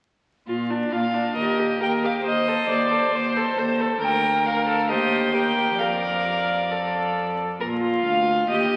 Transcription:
0.48 cello A#2, violin F4
0.70 violin D4
0.92 cello A#2, violin F4 F5
1.14 violin D4
1.36 cello D#2, viola G4, violin A#4 D#5
1.59 violin G4
1.81 cello D#2, violin A#4 G5, viola A#4
2.03 violin G4 F5
2.26 cello D#2, violin C5 D#5, viola C5
2.48 violin A4
2.69 cello D#2, violin C5 D5
2.91 violin A4
3.14 cello D#2, violin C5
3.37 violin A4
3.58 cello D#2, viola A4, violin C5
3.80 violin A4
4.02 cello D2, violin A#4 G5, viola A#4
4.46 violin A#4 F5
4.68 violin A4
4.89 cello D#2, violin G4 D#5, viola C5
5.34 violin G4 G5, viola A#4
5.79 cello F2, violin A#4 F5, viola D5
6.70 violin A4
7.60 cello A#2, viola F4, violin A#4
7.83 violin F4
8.05 cello D2, violin F5
8.50 cello D#2, violin G4 D#5, viola G4

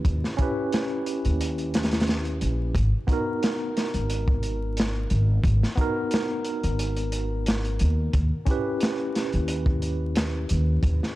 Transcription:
Already playing: tine electric piano C#4 E4 G4 B4
0.05 upright bass D#2, kick, closed hi-hat
0.24 snare
0.37 tine electric piano C#4 E4 G4, kick, closed hi-hat
0.42 tine electric piano B4
0.73 snare, closed hi-hat
1.06 closed hi-hat
1.25 upright bass D#2, closed hi-hat
1.41 closed hi-hat
1.58 closed hi-hat
1.74 snare, closed hi-hat
1.83 snare, closed hi-hat
1.91 snare, closed hi-hat
2.00 snare, closed hi-hat
2.07 snare, closed hi-hat
2.25 closed hi-hat
2.41 upright bass A#1, closed hi-hat
2.75 upright bass G#1, kick, closed hi-hat
3.07 tine electric piano B3 D#4 F#4, kick, closed hi-hat
3.13 tine electric piano A#4
3.43 snare, closed hi-hat
3.77 snare, closed hi-hat
3.94 upright bass G#1, closed hi-hat
4.10 closed hi-hat
4.28 kick
4.43 closed hi-hat
4.77 snare, closed hi-hat
5.10 upright bass G#1, closed hi-hat
5.44 upright bass G#1, kick, closed hi-hat
5.63 snare
5.76 tine electric piano B3 D#4 F#4, kick, closed hi-hat
5.81 tine electric piano A#4
6.11 snare, closed hi-hat
6.45 closed hi-hat
6.63 upright bass G#1, closed hi-hat
6.79 closed hi-hat
6.96 closed hi-hat
7.12 closed hi-hat
7.46 snare, closed hi-hat
7.65 closed hi-hat
7.79 upright bass D#2, closed hi-hat
8.13 upright bass D#2, kick, closed hi-hat
8.45 tine electric piano C#4 E4 G4, kick, closed hi-hat
8.51 tine electric piano B4
8.80 snare, closed hi-hat
9.15 snare, closed hi-hat
9.33 upright bass D#2, closed hi-hat
9.48 closed hi-hat
9.66 kick
9.82 closed hi-hat
10.15 snare, closed hi-hat
10.49 upright bass D#2, closed hi-hat
10.83 upright bass D#2, kick, closed hi-hat
11.03 snare

